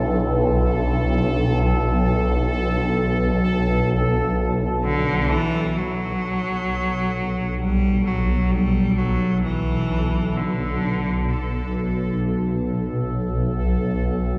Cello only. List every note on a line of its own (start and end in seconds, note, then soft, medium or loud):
4.84 5.32 D3 medium
5.30 5.79 E3 medium
5.77 7.60 F#3 medium
7.59 8.08 G3 medium
8.06 8.53 F#3 medium
8.52 9.00 G3 medium
8.98 9.43 F#3 medium
9.44 10.38 E3 medium
10.36 11.75 D3 medium